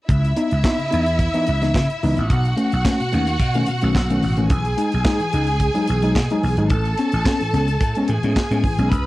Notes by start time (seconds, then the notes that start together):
0.08 C#2 C#3 E4 E5, kick, closed hi-hat
0.25 closed hi-hat
0.36 B3 D#4, closed hi-hat
0.51 C#2, closed hi-hat
0.64 B3 D#4, kick, snare, clap
0.79 C#3, closed hi-hat
0.91 E2 B3 D#4, closed hi-hat
1.06 closed hi-hat
1.19 kick, closed hi-hat
1.34 E3 B3 D#4, closed hi-hat
1.47 C#2 C#3, closed hi-hat
1.62 E3 B3 D#4, snare, closed hi-hat
1.74 C#3, kick, snare, clap
1.90 closed hi-hat
2.03 C#2 E3 B3 D#4, open hi-hat
2.17 A1 B3 D#4, closed hi-hat
2.30 B1 B2 F#4 F#5, kick, closed hi-hat
2.45 closed hi-hat
2.57 A3 C#4, closed hi-hat
2.72 B1, closed hi-hat
2.85 A3 C#4, kick, snare, clap
3.00 B2, closed hi-hat
3.12 D#2 A3 C#4, closed hi-hat
3.27 closed hi-hat
3.39 B2, kick, closed hi-hat
3.54 D#3 A3 C#4, closed hi-hat
3.66 B2, closed hi-hat
3.81 B1 D#3 A3 C#4, closed hi-hat
3.95 B1, kick, snare, clap
4.10 D#3 A3 C#4, closed hi-hat
4.23 A1 B2, open hi-hat
4.37 D#3 A3 C#4, closed hi-hat
4.50 B1 E3 G#4 G#5, kick, closed hi-hat
4.65 closed hi-hat
4.77 G#3 D#4, closed hi-hat
4.92 B1, closed hi-hat
5.05 G#3 D#4, kick, snare, clap
5.20 E3, closed hi-hat
5.33 C#2 G#3 D#4, closed hi-hat
5.47 closed hi-hat
5.60 kick, closed hi-hat
5.74 F#3 G#3 D#4, closed hi-hat
5.87 B1 E3, closed hi-hat
6.02 F#3 G#3 D#4, closed hi-hat
6.15 B2, kick, snare, clap
6.30 F#3 G#3 D#4, closed hi-hat
6.43 B1 E3, open hi-hat
6.57 G#1 F#3 G#3 D#4, closed hi-hat
6.70 A1 A2 E3 A4 A5, kick, closed hi-hat
6.85 closed hi-hat
6.98 B3 C#4, closed hi-hat
7.12 A1, closed hi-hat
7.26 B3 C#4, kick, snare, clap
7.41 A2 E3, closed hi-hat
7.53 C#2 B3 C#4, closed hi-hat
7.68 closed hi-hat
7.80 A2, kick, closed hi-hat
7.95 G#3 B3 C#4, closed hi-hat
8.08 A2 E3 G#4 G#5, closed hi-hat
8.23 A2 G#3 B3 C#4, closed hi-hat
8.36 kick, snare, clap
8.51 A2 G#3 B3 C#4, closed hi-hat
8.64 A2 E3, kick, open hi-hat
8.78 B1 G#3 B3 C#4, closed hi-hat
8.92 C#2 C#3 B4 B5, kick, closed hi-hat